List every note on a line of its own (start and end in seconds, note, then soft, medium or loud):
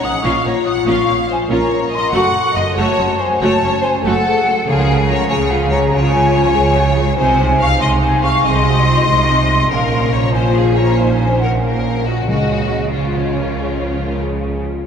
0.00 0.12 A#1 soft
0.00 0.11 A#2 medium
0.00 0.11 F3 soft
0.00 0.11 A#3 soft
0.00 0.23 C#4 medium
0.00 0.24 F#5 medium
0.00 0.25 D#6 medium
0.05 0.25 F#5 medium
0.23 0.33 A#1 medium
0.23 0.32 A#2 medium
0.23 0.44 C#4 medium
0.23 0.44 F4 medium
0.23 1.48 F4 medium
0.23 0.46 F5 medium
0.23 0.45 C#6 medium
0.45 0.53 A#1 soft
0.45 0.53 A#2 soft
0.45 0.54 A#3 medium
0.45 0.54 C#4 soft
0.45 0.54 C#5 medium
0.45 0.67 C#5 medium
0.45 0.66 A#5 medium
0.66 0.87 F#5 medium
0.66 0.72 D#6 medium
0.87 0.95 A#1 medium
0.87 0.95 A#2 medium
0.87 1.06 C#4 medium
0.87 1.07 F4 medium
0.87 1.30 F5 medium
0.87 1.29 F5 medium
0.87 1.12 C#6 medium
1.07 1.17 A#1 medium
1.07 1.16 A#2 medium
1.07 1.15 A#3 medium
1.07 1.15 C#4 medium
1.30 1.38 C5 medium
1.30 1.51 C5 medium
1.30 1.38 G#5 medium
1.48 1.57 A#1 medium
1.48 1.57 A#2 medium
1.48 1.70 C#4 medium
1.48 1.70 F4 medium
1.48 2.11 A#4 medium
1.48 1.92 C#5 medium
1.52 1.92 C#5 medium
1.52 1.92 A#5 medium
1.91 2.13 D#5 medium
1.91 2.14 D#5 medium
1.91 2.14 C6 loud
2.11 2.21 F#1 medium
2.11 2.21 F#2 medium
2.11 2.33 A3 medium
2.11 2.33 F#4 medium
2.11 2.77 A4 medium
2.11 2.54 F#5 medium
2.11 2.55 F#5 medium
2.11 2.55 C#6 loud
2.55 2.64 F#1 medium
2.55 2.63 F#2 medium
2.55 2.64 C#3 soft
2.55 2.64 A3 soft
2.55 2.77 D#5 medium
2.55 2.62 C6 medium
2.76 2.86 F#1 medium
2.76 2.84 F#2 medium
2.76 2.97 A3 medium
2.76 3.24 F#4 medium
2.76 2.97 F#4 medium
2.76 3.18 C#5 medium
2.76 3.19 A5 loud
2.97 3.07 F#1 medium
2.97 3.05 F#2 medium
2.97 3.07 F#3 medium
2.97 3.07 C#4 medium
3.17 3.25 C5 medium
3.17 3.39 C5 medium
3.17 3.41 G#5 medium
3.40 3.49 F#1 medium
3.40 3.48 F#2 medium
3.40 3.61 A3 medium
3.40 4.02 C#4 medium
3.40 3.61 F#4 medium
3.40 3.81 C#5 medium
3.40 3.82 C#5 medium
3.40 3.82 A5 loud
3.61 3.71 F#1 medium
3.61 3.69 F#2 medium
3.61 3.72 F#3 medium
3.61 3.72 C#4 medium
3.81 3.89 C5 medium
3.81 4.03 C5 medium
3.81 4.04 G#5 medium
4.02 4.13 F#1 medium
4.02 4.12 F#2 medium
4.02 4.24 A3 medium
4.02 4.24 F#4 medium
4.02 4.64 A4 medium
4.02 4.65 A4 medium
4.02 4.25 A4 medium
4.02 4.66 F#5 loud
4.26 4.46 G#4 medium
4.49 4.67 A4 medium
4.66 5.22 C#2 medium
4.66 5.24 C#3 medium
4.66 5.21 C#3 medium
4.66 4.86 F3 medium
4.66 4.86 F4 medium
4.66 5.07 G#4 medium
4.66 5.09 G#4 medium
4.66 5.30 A#4 medium
4.66 5.08 F5 loud
4.88 5.08 G#3 medium
4.88 5.09 G#4 medium
5.08 5.30 F3 medium
5.08 5.30 F4 medium
5.08 5.27 C#5 medium
5.08 5.28 C#5 medium
5.08 5.28 A#5 medium
5.28 5.85 C#2 medium
5.28 5.84 C#3 medium
5.28 5.50 G#3 medium
5.28 5.91 G#4 medium
5.28 5.50 G#4 medium
5.28 5.36 C#5 medium
5.28 5.49 C#5 medium
5.28 5.50 G#5 medium
5.49 5.70 F3 medium
5.49 5.70 F4 medium
5.49 5.57 G#4 medium
5.49 5.71 G#4 medium
5.49 5.72 F5 loud
5.70 5.92 G#3 medium
5.70 5.92 G#4 medium
5.70 5.78 C#5 medium
5.70 5.90 C#5 medium
5.70 5.92 A#5 medium
5.92 6.47 C#2 medium
5.92 6.48 C#3 medium
5.92 6.14 F3 medium
5.92 6.55 F4 medium
5.92 6.13 F4 medium
5.92 7.15 C#5 medium
5.92 7.16 C#5 medium
5.92 6.88 G#5 loud
6.13 6.34 G#3 medium
6.13 6.34 G#4 medium
6.35 6.54 F3 medium
6.35 6.54 F4 medium
6.54 7.10 C#2 medium
6.54 7.10 C#3 medium
6.54 6.76 G#3 medium
6.54 6.76 G#4 medium
6.54 6.64 G#4 medium
6.74 6.97 F3 medium
6.74 6.97 F4 medium
6.74 6.84 F#4 medium
6.95 7.18 G#3 medium
6.95 7.05 F4 medium
6.95 7.18 G#4 medium
7.17 7.73 C2 medium
7.17 7.74 C3 medium
7.17 7.37 C4 medium
7.17 8.41 D#4 medium
7.17 7.37 D#4 medium
7.17 7.58 C5 medium
7.17 7.59 C5 medium
7.17 7.59 G#5 loud
7.39 7.60 G#3 medium
7.39 7.59 C4 medium
7.59 7.79 C4 medium
7.59 7.81 D#4 medium
7.59 7.80 F5 medium
7.59 7.67 C#6 medium
7.80 8.37 C2 medium
7.80 8.37 C3 medium
7.80 8.02 G#3 medium
7.80 8.01 C4 medium
7.80 7.89 D#5 medium
7.80 8.01 C6 medium
8.01 8.21 C4 medium
8.01 8.22 D#4 medium
8.01 8.22 C5 medium
8.01 8.10 C5 medium
8.01 8.23 G#5 loud
8.22 8.44 G#3 medium
8.22 8.42 C4 medium
8.22 8.44 F5 medium
8.22 8.45 F5 medium
8.22 8.44 C#6 loud
8.43 9.00 C2 medium
8.43 8.99 C3 medium
8.43 8.62 C4 medium
8.43 8.64 D#4 medium
8.43 8.65 G#4 medium
8.43 9.67 D#5 medium
8.43 9.71 D#5 medium
8.43 9.71 C6 loud
8.64 8.85 G#3 medium
8.64 8.85 C4 medium
8.64 8.86 F#4 medium
8.86 9.05 C4 medium
8.86 9.05 D#4 medium
8.86 9.07 F4 medium
9.06 9.63 C2 medium
9.06 9.62 C3 medium
9.06 9.28 G#3 medium
9.06 9.26 C4 medium
9.06 9.70 D#4 medium
9.27 9.47 C4 medium
9.27 9.49 D#4 medium
9.48 9.70 G#3 medium
9.48 9.70 C4 medium
9.69 12.23 A#1 medium
9.69 12.23 A#2 medium
9.69 11.58 F3 medium
9.69 10.32 C#4 medium
9.69 11.58 C#4 medium
9.69 10.11 A#4 medium
9.69 10.12 A#4 medium
9.69 10.13 F5 loud
10.12 10.34 C#5 medium
10.12 10.34 A#5 medium
10.33 10.98 F4 medium
10.33 10.54 C5 medium
10.33 10.55 C5 medium
10.33 10.55 G#5 loud
10.54 10.76 G#4 medium
10.54 10.77 G#4 medium
10.54 10.76 F5 medium
10.76 10.98 C#5 medium
10.76 10.97 A#5 medium
10.98 11.63 D#4 medium
10.98 11.40 C5 medium
10.98 11.41 C5 medium
10.98 11.40 G#5 medium
11.40 11.60 A#4 medium
11.40 11.51 A#4 medium
11.40 11.62 F#5 medium
11.62 12.26 F3 medium
11.62 12.26 C#4 medium
11.62 12.27 C#4 medium
11.62 12.04 A#4 medium
11.62 12.06 A#4 medium
11.62 12.05 F5 medium
12.05 12.26 F#4 medium
12.05 12.28 F#4 medium
12.05 12.26 D#5 medium
12.27 14.64 C#2 medium
12.27 14.64 C#3 medium
12.27 12.89 C#3 medium
12.27 12.92 G#3 medium
12.27 12.92 C#4 medium
12.27 12.91 F#4 medium
12.27 12.93 F#4 medium
12.27 12.89 G#4 medium
12.27 12.91 D#5 medium
12.91 14.64 F3 medium
12.91 14.64 C#4 medium
12.91 13.32 F4 medium
12.91 14.20 F4 soft
12.91 14.21 F4 soft
12.91 14.24 C#5 medium
13.37 13.58 A#4 medium
13.61 13.81 G#4 medium
13.81 13.91 F4 medium
14.03 14.23 A#4 medium
14.22 14.66 G#4 medium
14.65 14.85 F4 soft